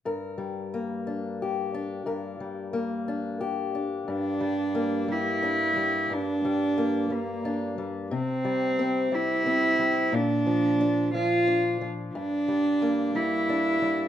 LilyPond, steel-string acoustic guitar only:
\new Staff \with { instrumentName = "Steel-string acoustic guitar" } { \clef bass \time 6/8 \key g \dorian \tempo 4. = 60 << { bes'4 bes8 d'8 g'8 d'8 | bes'4 bes8 d'8 g'8 d'8~ | d'4 bes4 d'4~ | d'4 bes4 d'4 |
r4 c'4 c'4 | r4 d'4 d'4 | r4 bes4 d'4 | } \\ { g,8 g2~ g8 | g,8 g2~ g8 | g,8 g4 g4 g8 | g,8 g4 g4 g8 |
c8 g4 g4 g8 | bes,8 f4 f4 f8 | g,8 g4 g4 g8 | } >> }